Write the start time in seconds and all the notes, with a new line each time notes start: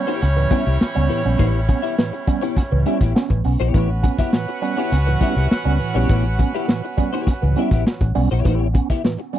Already playing: G3 C#4 E4 C#5
0.07 B3 C#4 E4 G4 C#5, closed hi-hat
0.21 C#2 B3 C#4, muted clean electric guitar stroke, snare, closed hi-hat
0.36 A2 E3, muted clean electric guitar stroke, closed hi-hat
0.50 G3 B3 C#4 E4 G4 E5, kick, closed hi-hat
0.65 C2 B3 E4 G4 E5, snare, closed hi-hat
0.80 muted clean electric guitar stroke, snare
0.95 C#2 G3 B3 C#4, closed hi-hat
1.09 A2 E3 B3 E4 G4 C#5, open hi-hat
1.25 A#1 G3 B3 C#4, closed hi-hat
1.38 A1 A2 E3 B3 E4 G4 C#5, kick, closed hi-hat
1.54 closed hi-hat
1.68 B3 C#4, muted clean electric guitar stroke, kick, closed hi-hat
1.82 B3 E4 G4 E5, closed hi-hat
1.98 A2 E3, muted clean electric guitar stroke, snare
2.12 muted clean electric guitar stroke, closed hi-hat
2.27 G3 B3 C#4, kick, closed hi-hat
2.41 B3 C#4 E4 G4 C#5, closed hi-hat
2.57 B3 C#4, muted clean electric guitar stroke, muted fingered electric bass stroke, kick, snare, closed hi-hat
2.71 C#2 A2 E3, muted clean electric guitar stroke
2.86 G3 B3 C#4 E4 G4 E5, closed hi-hat
3.01 A1 B3 E4 G4 E5, kick, snare, closed hi-hat
3.15 B3 C#4, muted clean electric guitar stroke, snare
3.30 A1 A2 E3, muted clean electric guitar stroke, kick, closed hi-hat
3.44 B1 B3 C#4, open hi-hat
3.60 A#1 B3 E4 G4 C#5, closed hi-hat
3.74 A1 A2 E3 B3 C#4 E4 F#4 G4 B4 C#5 F#5, kick, closed hi-hat
4.03 B3 C#4, muted clean electric guitar stroke, kick, closed hi-hat
4.18 B3 E4 G4 E5, kick, snare, closed hi-hat
4.33 A2 E3, muted clean electric guitar stroke, snare
4.48 muted clean electric guitar stroke, closed hi-hat
4.62 G3 B3 C#4, closed hi-hat
4.77 B3 C#4 E4 G4 C#5, closed hi-hat
4.92 C#2 B3 C#4, muted clean electric guitar stroke, snare, closed hi-hat
5.07 A2 E3, muted clean electric guitar stroke, closed hi-hat
5.21 G3 B3 C#4 E4 G4 E5, kick, closed hi-hat
5.36 C2 B3 E4 G4 E5, snare, closed hi-hat
5.51 snare
5.65 C#2 G3 B3 C#4, muted clean electric guitar stroke, closed hi-hat
5.80 A2 E3, open hi-hat
5.94 A#1 G3 B3 C#4 E4 G4 C#5, closed hi-hat
6.09 A1 A2 E3 B3 E4 G4 C#5, kick, closed hi-hat
6.24 closed hi-hat
6.38 B3 C#4, muted clean electric guitar stroke, kick, closed hi-hat
6.54 B3 E4 G4 E5, closed hi-hat
6.68 A2 E3, snare
6.84 muted clean electric guitar stroke, closed hi-hat
6.97 G3 B3 C#4, kick, closed hi-hat
7.13 B3 C#4 E4 G4 C#5, closed hi-hat
7.27 B3 C#4, muted fingered electric bass stroke, muted clean electric guitar stroke, kick, snare, closed hi-hat
7.42 C#2 A2 E3, muted clean electric guitar stroke, closed hi-hat
7.56 G3 B3 C#4 E4 G4 E5, closed hi-hat
7.71 A1 B3 E4 G4 E5, kick, snare, closed hi-hat
7.87 muted clean electric guitar stroke, snare
8.01 A1, muted clean electric guitar stroke, kick, closed hi-hat
8.15 B1 G3 B3 C#4, open hi-hat
8.31 A#1 B3 E4 G4 C#5, closed hi-hat
8.45 A1 A2 E3 B3 E4 G4 C#5, kick, closed hi-hat
8.74 B3 C#4, muted clean electric guitar stroke, kick, closed hi-hat
8.90 B3 E4 G4 E5, kick, snare, closed hi-hat
9.04 A2 E3, snare
9.19 muted clean electric guitar stroke
9.33 G3 B3 C#4, closed hi-hat